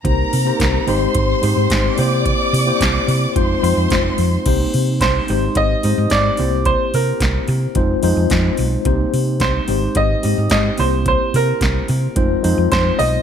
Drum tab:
CC |--------|--------|x-------|--------|
HH |xoxoxoxo|xoxoxoxo|xoxoxoxo|xoxoxoxo|
SD |--o---o-|--o---o-|--o---o-|--o---o-|
BD |o-o-o-o-|o-o-o-o-|o-o-o-o-|o-o-o-o-|

CC |--------|--------|
HH |xoxoxoxo|xoxoxoxo|
SD |--o---o-|--o---o-|
BD |o-o-o-o-|o-o-o-o-|